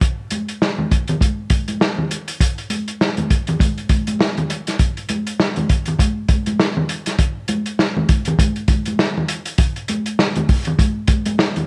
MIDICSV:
0, 0, Header, 1, 2, 480
1, 0, Start_track
1, 0, Tempo, 598802
1, 10, Time_signature, 4, 2, 24, 8
1, 9354, End_track
2, 0, Start_track
2, 0, Title_t, "Drums"
2, 11, Note_on_c, 9, 36, 102
2, 11, Note_on_c, 9, 42, 87
2, 91, Note_off_c, 9, 42, 0
2, 92, Note_off_c, 9, 36, 0
2, 245, Note_on_c, 9, 42, 63
2, 254, Note_on_c, 9, 62, 31
2, 254, Note_on_c, 9, 63, 68
2, 325, Note_off_c, 9, 42, 0
2, 335, Note_off_c, 9, 62, 0
2, 335, Note_off_c, 9, 63, 0
2, 389, Note_on_c, 9, 42, 44
2, 469, Note_off_c, 9, 42, 0
2, 494, Note_on_c, 9, 62, 30
2, 496, Note_on_c, 9, 38, 81
2, 574, Note_off_c, 9, 62, 0
2, 576, Note_off_c, 9, 38, 0
2, 629, Note_on_c, 9, 63, 64
2, 629, Note_on_c, 9, 64, 67
2, 709, Note_off_c, 9, 63, 0
2, 709, Note_off_c, 9, 64, 0
2, 728, Note_on_c, 9, 62, 32
2, 733, Note_on_c, 9, 42, 71
2, 734, Note_on_c, 9, 36, 82
2, 808, Note_off_c, 9, 62, 0
2, 813, Note_off_c, 9, 42, 0
2, 814, Note_off_c, 9, 36, 0
2, 862, Note_on_c, 9, 42, 42
2, 875, Note_on_c, 9, 64, 79
2, 942, Note_off_c, 9, 42, 0
2, 956, Note_off_c, 9, 64, 0
2, 967, Note_on_c, 9, 62, 31
2, 967, Note_on_c, 9, 63, 63
2, 971, Note_on_c, 9, 36, 86
2, 976, Note_on_c, 9, 42, 75
2, 1047, Note_off_c, 9, 62, 0
2, 1047, Note_off_c, 9, 63, 0
2, 1051, Note_off_c, 9, 36, 0
2, 1056, Note_off_c, 9, 42, 0
2, 1201, Note_on_c, 9, 42, 80
2, 1206, Note_on_c, 9, 36, 90
2, 1206, Note_on_c, 9, 63, 49
2, 1281, Note_off_c, 9, 42, 0
2, 1286, Note_off_c, 9, 36, 0
2, 1286, Note_off_c, 9, 63, 0
2, 1345, Note_on_c, 9, 42, 42
2, 1350, Note_on_c, 9, 63, 59
2, 1425, Note_off_c, 9, 42, 0
2, 1430, Note_off_c, 9, 63, 0
2, 1445, Note_on_c, 9, 62, 30
2, 1452, Note_on_c, 9, 38, 102
2, 1525, Note_off_c, 9, 62, 0
2, 1532, Note_off_c, 9, 38, 0
2, 1590, Note_on_c, 9, 64, 81
2, 1670, Note_off_c, 9, 64, 0
2, 1690, Note_on_c, 9, 42, 67
2, 1696, Note_on_c, 9, 62, 39
2, 1770, Note_off_c, 9, 42, 0
2, 1776, Note_off_c, 9, 62, 0
2, 1826, Note_on_c, 9, 42, 57
2, 1906, Note_off_c, 9, 42, 0
2, 1928, Note_on_c, 9, 36, 89
2, 1930, Note_on_c, 9, 42, 91
2, 2008, Note_off_c, 9, 36, 0
2, 2010, Note_off_c, 9, 42, 0
2, 2069, Note_on_c, 9, 42, 36
2, 2149, Note_off_c, 9, 42, 0
2, 2164, Note_on_c, 9, 63, 67
2, 2165, Note_on_c, 9, 42, 68
2, 2244, Note_off_c, 9, 63, 0
2, 2245, Note_off_c, 9, 42, 0
2, 2307, Note_on_c, 9, 42, 46
2, 2387, Note_off_c, 9, 42, 0
2, 2411, Note_on_c, 9, 62, 31
2, 2414, Note_on_c, 9, 38, 88
2, 2492, Note_off_c, 9, 62, 0
2, 2494, Note_off_c, 9, 38, 0
2, 2541, Note_on_c, 9, 42, 38
2, 2549, Note_on_c, 9, 63, 75
2, 2549, Note_on_c, 9, 64, 68
2, 2621, Note_off_c, 9, 42, 0
2, 2630, Note_off_c, 9, 63, 0
2, 2630, Note_off_c, 9, 64, 0
2, 2649, Note_on_c, 9, 42, 74
2, 2649, Note_on_c, 9, 62, 31
2, 2650, Note_on_c, 9, 36, 76
2, 2729, Note_off_c, 9, 42, 0
2, 2729, Note_off_c, 9, 62, 0
2, 2730, Note_off_c, 9, 36, 0
2, 2782, Note_on_c, 9, 42, 44
2, 2793, Note_on_c, 9, 64, 81
2, 2863, Note_off_c, 9, 42, 0
2, 2873, Note_off_c, 9, 64, 0
2, 2881, Note_on_c, 9, 62, 33
2, 2881, Note_on_c, 9, 63, 62
2, 2887, Note_on_c, 9, 36, 83
2, 2892, Note_on_c, 9, 42, 73
2, 2961, Note_off_c, 9, 62, 0
2, 2961, Note_off_c, 9, 63, 0
2, 2968, Note_off_c, 9, 36, 0
2, 2972, Note_off_c, 9, 42, 0
2, 3027, Note_on_c, 9, 42, 30
2, 3107, Note_off_c, 9, 42, 0
2, 3121, Note_on_c, 9, 42, 72
2, 3122, Note_on_c, 9, 62, 30
2, 3122, Note_on_c, 9, 63, 49
2, 3123, Note_on_c, 9, 36, 85
2, 3201, Note_off_c, 9, 42, 0
2, 3202, Note_off_c, 9, 62, 0
2, 3202, Note_off_c, 9, 63, 0
2, 3203, Note_off_c, 9, 36, 0
2, 3263, Note_on_c, 9, 42, 49
2, 3269, Note_on_c, 9, 63, 65
2, 3343, Note_off_c, 9, 42, 0
2, 3349, Note_off_c, 9, 63, 0
2, 3360, Note_on_c, 9, 62, 32
2, 3371, Note_on_c, 9, 38, 115
2, 3440, Note_off_c, 9, 62, 0
2, 3451, Note_off_c, 9, 38, 0
2, 3506, Note_on_c, 9, 42, 34
2, 3510, Note_on_c, 9, 64, 78
2, 3586, Note_off_c, 9, 42, 0
2, 3590, Note_off_c, 9, 64, 0
2, 3607, Note_on_c, 9, 42, 74
2, 3616, Note_on_c, 9, 62, 35
2, 3687, Note_off_c, 9, 42, 0
2, 3696, Note_off_c, 9, 62, 0
2, 3744, Note_on_c, 9, 42, 55
2, 3754, Note_on_c, 9, 38, 35
2, 3824, Note_off_c, 9, 42, 0
2, 3834, Note_off_c, 9, 38, 0
2, 3842, Note_on_c, 9, 42, 90
2, 3844, Note_on_c, 9, 36, 92
2, 3853, Note_on_c, 9, 62, 33
2, 3922, Note_off_c, 9, 42, 0
2, 3924, Note_off_c, 9, 36, 0
2, 3933, Note_off_c, 9, 62, 0
2, 3985, Note_on_c, 9, 42, 38
2, 4065, Note_off_c, 9, 42, 0
2, 4078, Note_on_c, 9, 42, 65
2, 4086, Note_on_c, 9, 63, 74
2, 4158, Note_off_c, 9, 42, 0
2, 4166, Note_off_c, 9, 63, 0
2, 4222, Note_on_c, 9, 42, 49
2, 4302, Note_off_c, 9, 42, 0
2, 4326, Note_on_c, 9, 38, 93
2, 4406, Note_off_c, 9, 38, 0
2, 4456, Note_on_c, 9, 42, 34
2, 4467, Note_on_c, 9, 63, 73
2, 4467, Note_on_c, 9, 64, 70
2, 4537, Note_off_c, 9, 42, 0
2, 4547, Note_off_c, 9, 63, 0
2, 4547, Note_off_c, 9, 64, 0
2, 4564, Note_on_c, 9, 62, 32
2, 4565, Note_on_c, 9, 42, 74
2, 4567, Note_on_c, 9, 36, 88
2, 4644, Note_off_c, 9, 62, 0
2, 4645, Note_off_c, 9, 42, 0
2, 4648, Note_off_c, 9, 36, 0
2, 4694, Note_on_c, 9, 42, 47
2, 4711, Note_on_c, 9, 64, 69
2, 4774, Note_off_c, 9, 42, 0
2, 4791, Note_off_c, 9, 64, 0
2, 4799, Note_on_c, 9, 62, 30
2, 4799, Note_on_c, 9, 63, 72
2, 4804, Note_on_c, 9, 36, 78
2, 4807, Note_on_c, 9, 42, 79
2, 4879, Note_off_c, 9, 62, 0
2, 4879, Note_off_c, 9, 63, 0
2, 4884, Note_off_c, 9, 36, 0
2, 4888, Note_off_c, 9, 42, 0
2, 5038, Note_on_c, 9, 42, 74
2, 5039, Note_on_c, 9, 62, 33
2, 5039, Note_on_c, 9, 63, 55
2, 5041, Note_on_c, 9, 36, 92
2, 5118, Note_off_c, 9, 42, 0
2, 5119, Note_off_c, 9, 62, 0
2, 5119, Note_off_c, 9, 63, 0
2, 5121, Note_off_c, 9, 36, 0
2, 5179, Note_on_c, 9, 42, 44
2, 5188, Note_on_c, 9, 63, 66
2, 5259, Note_off_c, 9, 42, 0
2, 5268, Note_off_c, 9, 63, 0
2, 5284, Note_on_c, 9, 62, 29
2, 5287, Note_on_c, 9, 38, 111
2, 5364, Note_off_c, 9, 62, 0
2, 5367, Note_off_c, 9, 38, 0
2, 5425, Note_on_c, 9, 64, 83
2, 5506, Note_off_c, 9, 64, 0
2, 5523, Note_on_c, 9, 42, 72
2, 5603, Note_off_c, 9, 42, 0
2, 5659, Note_on_c, 9, 42, 54
2, 5669, Note_on_c, 9, 38, 34
2, 5740, Note_off_c, 9, 42, 0
2, 5749, Note_off_c, 9, 38, 0
2, 5761, Note_on_c, 9, 42, 94
2, 5762, Note_on_c, 9, 36, 96
2, 5841, Note_off_c, 9, 42, 0
2, 5842, Note_off_c, 9, 36, 0
2, 5995, Note_on_c, 9, 42, 65
2, 6003, Note_on_c, 9, 62, 33
2, 6003, Note_on_c, 9, 63, 67
2, 6075, Note_off_c, 9, 42, 0
2, 6083, Note_off_c, 9, 62, 0
2, 6083, Note_off_c, 9, 63, 0
2, 6138, Note_on_c, 9, 42, 47
2, 6218, Note_off_c, 9, 42, 0
2, 6246, Note_on_c, 9, 38, 90
2, 6249, Note_on_c, 9, 62, 32
2, 6326, Note_off_c, 9, 38, 0
2, 6329, Note_off_c, 9, 62, 0
2, 6386, Note_on_c, 9, 63, 75
2, 6386, Note_on_c, 9, 64, 75
2, 6467, Note_off_c, 9, 63, 0
2, 6467, Note_off_c, 9, 64, 0
2, 6483, Note_on_c, 9, 42, 74
2, 6486, Note_on_c, 9, 36, 86
2, 6563, Note_off_c, 9, 42, 0
2, 6566, Note_off_c, 9, 36, 0
2, 6613, Note_on_c, 9, 42, 46
2, 6634, Note_on_c, 9, 64, 78
2, 6694, Note_off_c, 9, 42, 0
2, 6714, Note_off_c, 9, 64, 0
2, 6723, Note_on_c, 9, 36, 78
2, 6728, Note_on_c, 9, 42, 83
2, 6729, Note_on_c, 9, 62, 33
2, 6729, Note_on_c, 9, 63, 74
2, 6804, Note_off_c, 9, 36, 0
2, 6808, Note_off_c, 9, 42, 0
2, 6810, Note_off_c, 9, 62, 0
2, 6810, Note_off_c, 9, 63, 0
2, 6860, Note_on_c, 9, 42, 30
2, 6940, Note_off_c, 9, 42, 0
2, 6957, Note_on_c, 9, 42, 75
2, 6960, Note_on_c, 9, 36, 88
2, 6969, Note_on_c, 9, 62, 33
2, 6969, Note_on_c, 9, 63, 46
2, 7037, Note_off_c, 9, 42, 0
2, 7040, Note_off_c, 9, 36, 0
2, 7050, Note_off_c, 9, 62, 0
2, 7050, Note_off_c, 9, 63, 0
2, 7098, Note_on_c, 9, 42, 44
2, 7116, Note_on_c, 9, 63, 64
2, 7178, Note_off_c, 9, 42, 0
2, 7196, Note_off_c, 9, 63, 0
2, 7207, Note_on_c, 9, 38, 113
2, 7209, Note_on_c, 9, 62, 32
2, 7287, Note_off_c, 9, 38, 0
2, 7290, Note_off_c, 9, 62, 0
2, 7354, Note_on_c, 9, 64, 78
2, 7434, Note_off_c, 9, 64, 0
2, 7442, Note_on_c, 9, 42, 77
2, 7523, Note_off_c, 9, 42, 0
2, 7579, Note_on_c, 9, 42, 58
2, 7659, Note_off_c, 9, 42, 0
2, 7679, Note_on_c, 9, 42, 89
2, 7683, Note_on_c, 9, 36, 109
2, 7760, Note_off_c, 9, 42, 0
2, 7764, Note_off_c, 9, 36, 0
2, 7824, Note_on_c, 9, 42, 34
2, 7904, Note_off_c, 9, 42, 0
2, 7921, Note_on_c, 9, 42, 68
2, 7930, Note_on_c, 9, 62, 33
2, 7930, Note_on_c, 9, 63, 64
2, 8002, Note_off_c, 9, 42, 0
2, 8011, Note_off_c, 9, 62, 0
2, 8011, Note_off_c, 9, 63, 0
2, 8062, Note_on_c, 9, 42, 48
2, 8142, Note_off_c, 9, 42, 0
2, 8168, Note_on_c, 9, 38, 92
2, 8172, Note_on_c, 9, 62, 33
2, 8249, Note_off_c, 9, 38, 0
2, 8252, Note_off_c, 9, 62, 0
2, 8300, Note_on_c, 9, 42, 34
2, 8309, Note_on_c, 9, 63, 73
2, 8309, Note_on_c, 9, 64, 76
2, 8380, Note_off_c, 9, 42, 0
2, 8389, Note_off_c, 9, 63, 0
2, 8389, Note_off_c, 9, 64, 0
2, 8407, Note_on_c, 9, 46, 56
2, 8410, Note_on_c, 9, 36, 84
2, 8412, Note_on_c, 9, 62, 34
2, 8487, Note_off_c, 9, 46, 0
2, 8490, Note_off_c, 9, 36, 0
2, 8492, Note_off_c, 9, 62, 0
2, 8536, Note_on_c, 9, 42, 49
2, 8555, Note_on_c, 9, 64, 71
2, 8616, Note_off_c, 9, 42, 0
2, 8635, Note_off_c, 9, 64, 0
2, 8645, Note_on_c, 9, 62, 31
2, 8645, Note_on_c, 9, 63, 71
2, 8648, Note_on_c, 9, 36, 87
2, 8650, Note_on_c, 9, 42, 76
2, 8725, Note_off_c, 9, 62, 0
2, 8725, Note_off_c, 9, 63, 0
2, 8728, Note_off_c, 9, 36, 0
2, 8730, Note_off_c, 9, 42, 0
2, 8878, Note_on_c, 9, 42, 76
2, 8883, Note_on_c, 9, 36, 85
2, 8886, Note_on_c, 9, 62, 33
2, 8886, Note_on_c, 9, 63, 56
2, 8958, Note_off_c, 9, 42, 0
2, 8963, Note_off_c, 9, 36, 0
2, 8966, Note_off_c, 9, 62, 0
2, 8966, Note_off_c, 9, 63, 0
2, 9022, Note_on_c, 9, 42, 49
2, 9027, Note_on_c, 9, 63, 70
2, 9102, Note_off_c, 9, 42, 0
2, 9107, Note_off_c, 9, 63, 0
2, 9125, Note_on_c, 9, 62, 32
2, 9130, Note_on_c, 9, 38, 107
2, 9205, Note_off_c, 9, 62, 0
2, 9210, Note_off_c, 9, 38, 0
2, 9266, Note_on_c, 9, 42, 36
2, 9272, Note_on_c, 9, 64, 75
2, 9346, Note_off_c, 9, 42, 0
2, 9352, Note_off_c, 9, 64, 0
2, 9354, End_track
0, 0, End_of_file